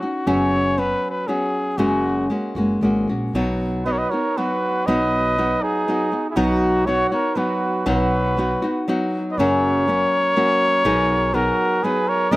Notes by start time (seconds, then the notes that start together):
Already playing: F#4
0.02 C#4 D#4 F#4
0.27 F#1 F#2 C#3 F#3 B3 C#4 F#4 C#5
0.78 F#3 B3 C#4 F#4 B4
1.10 B4
1.27 F#3 B3 C#4 F#4 G#4
1.77 F#1 F#2 C#3 G#3 A#3 C#4 F#4
2.30 G#3 A#3 C#4 F#4
2.55 F#1 G#3 A#3 C#4 F#4
2.81 G#1 G#3 A#3 C#4 F#4
3.08 A#1 G#3 A#3 C#4 F#4
3.33 B1 B2 F#3 B3 D#4 F#4
3.85 F#3 B3 D#4 F#4 B4 D#5
3.92 A#4 C#5
3.98 B4 D#5
4.10 D#4 F#4 A#4 C#5
4.14 B3
4.37 F#3 B3 D#4 F#4 B4
4.86 B1 B2 F#3 B3 D#4 F#4 B4 D#5
5.38 F#3 B3 D#4 F#4
5.61 D#4 G#4
5.88 F#3 B3 D#4 F#4
6.12 B3 D#4 F#4
6.30 E4 G#4
6.36 B1 B2 F#3 B3 D#4 F#4
6.86 F#3 B3 D#4 F#4 C#5
7.10 B3 D#4 F#4 A#4 C#5
7.35 F#3 B3 D#4 F#4 B4
7.86 B1 B2 F#3 B3 D#4 F#4 B4
8.37 F#3 B3 D#4 F#4
8.62 B3 D#4 F#4
8.88 F#3 B3 D#4 F#4
9.32 B4 D#5
9.38 F#1 F#2 C#3 F#3 A#3 C#4 F#4 A#4 C#5
9.87 F#3 A#3 C#4 F#4
10.36 F#3 A#3 C#4 F#4
10.85 B1 B2 F#3 B3 D#4 G#4
11.34 F#3 B3 D#4 F#4 G#4 A#4
11.83 F#3 B3 D#4 G#4 B4
12.07 A#4 C#5
12.31 F#1 F#2 C#3 F#3 A#3 C#4 A#4 D#5